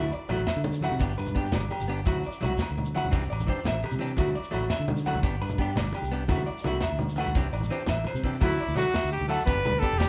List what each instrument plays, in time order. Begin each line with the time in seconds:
Already playing: fingered electric bass D2
0.03 low conga, shekere
0.12 clean electric guitar D5, closed hi-hat, shekere
0.28 fingered electric bass A1, clean electric guitar F#3 A3 E4 F#4, closed hi-hat, low conga, low agogo, shekere
0.37 high conga, low conga, shekere
0.47 clean electric guitar E5, snare, closed hi-hat, low agogo, shekere
0.56 fingered electric bass D3
0.64 closed hi-hat, low conga
0.73 shekere
0.81 clean electric guitar F#3 A3 E4 F#5, closed hi-hat, high conga, low agogo
0.85 clean electric guitar F#4
0.89 fingered electric bass C3, low conga, shekere
0.99 fingered electric bass G1, clean electric guitar B3 D4 G4, kick, closed hi-hat, shekere
1.08 shekere
1.18 fingered electric bass G2, clean electric guitar B4, closed hi-hat, low agogo
1.26 high conga, low conga, shekere
1.35 clean electric guitar B3 D4 G4, kick, closed hi-hat
1.46 shekere
1.52 fingered electric bass G1, clean electric guitar D5, snare, closed hi-hat, low conga, shekere
1.56 low agogo
1.70 clean electric guitar G4, closed hi-hat, high conga, low agogo
1.80 fingered electric bass G1, low conga, shekere
1.88 clean electric guitar B3 D4 G4, closed hi-hat
1.99 low conga
2.06 fingered electric bass D2, clean electric guitar F#3 E4 F#4, muted clean electric guitar stroke, kick, closed hi-hat, high conga, low conga, low agogo, shekere
2.15 low conga
2.24 clean electric guitar D5, closed hi-hat, shekere
2.32 shekere
2.40 clean electric guitar F#3 E4 F#4, muted clean electric guitar stroke, closed hi-hat, low conga, shekere
2.44 fingered electric bass C2, low agogo, shekere
2.52 high conga, low conga
2.57 muted clean electric guitar stroke, snare, closed hi-hat, shekere
2.62 low agogo
2.71 fingered electric bass D2
2.78 closed hi-hat, low conga
2.85 shekere
2.95 clean electric guitar F#3 E4 F#4 F#5, muted clean electric guitar stroke, snare, closed hi-hat, high conga, low agogo
3.03 fingered electric bass D2, low conga, shekere
3.11 fingered electric bass C2, clean electric guitar E3 C4 D4 G4, kick, closed hi-hat, shekere
3.22 shekere
3.30 fingered electric bass A1, clean electric guitar D5, closed hi-hat, low agogo
3.40 high conga, low conga, shekere
3.47 clean electric guitar E3 D4 G4 C5, muted clean electric guitar stroke, kick, closed hi-hat
3.57 shekere
3.64 fingered electric bass A1, clean electric guitar E5, snare, closed hi-hat, low conga, low agogo, shekere
3.82 clean electric guitar G4, closed hi-hat, high conga, low agogo
3.91 fingered electric bass C3, low conga, shekere
3.99 clean electric guitar E3 C4 D4 G4, closed hi-hat
4.10 low conga
4.17 fingered electric bass D2, clean electric guitar F#3 A3 E4 F#4, kick, closed hi-hat, high conga, low conga, low agogo, shekere
4.26 low conga, shekere
4.35 clean electric guitar D5, closed hi-hat, shekere
4.44 shekere
4.51 fingered electric bass A1, clean electric guitar F#3 A3 E4 F#4, closed hi-hat, low agogo, shekere
4.61 high conga, low conga, shekere
4.70 clean electric guitar E5, snare, closed hi-hat, low agogo, shekere
4.79 fingered electric bass D3
4.88 closed hi-hat, low conga
4.97 shekere
5.06 clean electric guitar F#3 A3 E4 F#4 F#5, closed hi-hat, high conga, low agogo
5.14 fingered electric bass D2, low conga, shekere
5.23 fingered electric bass G1, clean electric guitar B3 D4 G4, kick, closed hi-hat, shekere
5.41 fingered electric bass G2, clean electric guitar B4, closed hi-hat, low agogo
5.49 high conga, low conga, shekere
5.58 clean electric guitar B3 D4 G4, kick, closed hi-hat
5.76 fingered electric bass G1, clean electric guitar D5, snare, closed hi-hat, low conga, low agogo, shekere
5.92 clean electric guitar G4, closed hi-hat, high conga, low agogo
6.02 fingered electric bass C2, low conga, shekere
6.12 clean electric guitar B3 D4 G4, closed hi-hat
6.21 low conga
6.28 fingered electric bass D2, clean electric guitar E3 A3 E4 F#4, kick, closed hi-hat, high conga, low agogo, shekere
6.37 low conga, shekere
6.46 clean electric guitar D5, closed hi-hat, shekere
6.58 shekere
6.63 fingered electric bass C2, clean electric guitar E3 A3 E4 F#4, closed hi-hat, low conga, low agogo
6.68 clean electric guitar F#4
6.73 high conga
6.81 clean electric guitar E5, snare, closed hi-hat, low conga, low agogo, shekere
6.92 fingered electric bass D2
6.99 closed hi-hat, low conga, shekere
7.09 shekere
7.16 clean electric guitar E3 A3 F#5, closed hi-hat, high conga, low agogo, shekere
7.20 clean electric guitar E4 F#4
7.25 fingered electric bass D2, low conga
7.35 fingered electric bass C2, clean electric guitar E3 C4 D4 G4, kick, closed hi-hat, shekere
7.53 fingered electric bass A1, clean electric guitar D5, closed hi-hat, low agogo
7.61 high conga, low conga, shekere
7.71 clean electric guitar E3 C4 D4 G4 C5, closed hi-hat
7.86 fingered electric bass A1, clean electric guitar E5, snare, closed hi-hat, low conga, low agogo, shekere
8.04 clean electric guitar C5, closed hi-hat, high conga, low conga, low agogo, shekere
8.13 fingered electric bass C3, low conga, shekere
8.23 clean electric guitar E3 C4 D4 G4, kick, closed hi-hat
8.34 shekere
8.40 fingered electric bass D2, clean electric guitar F#3 A3 E4 F#4, trumpet E4, tonewheel organ E5 F#5 D6, kick, closed hi-hat, high conga, low conga, low agogo, shekere
8.49 low conga
8.59 clean electric guitar D5, closed hi-hat
8.67 fingered electric bass D2, low conga, shekere
8.75 clean electric guitar F#3 A3 E4 F#4, trumpet F#4, closed hi-hat, low conga, low agogo
8.86 shekere
8.94 clean electric guitar E5, snare, closed hi-hat, high conga, low agogo, shekere
9.03 fingered electric bass D2, low conga
9.12 trumpet G4, closed hi-hat
9.21 fingered electric bass D2, low conga
9.28 clean electric guitar F#3 A3 E4 F#4 F#5, trumpet A4, closed hi-hat, low agogo
9.39 shekere
9.46 fingered electric bass G1, clean electric guitar B3 D4 G4, trumpet B4, tonewheel organ D5 G5 B5, kick, closed hi-hat, high conga, shekere
9.55 fingered electric bass G1
9.65 clean electric guitar B4, closed hi-hat, low conga, low agogo
9.72 fingered electric bass D2
9.79 clean electric guitar B3 D4, trumpet A4, kick, closed hi-hat, shekere
9.84 clean electric guitar G4
9.91 fingered electric bass E1, shekere
9.98 trumpet G4, clean electric guitar D5, snare, closed hi-hat, high conga, low agogo, shekere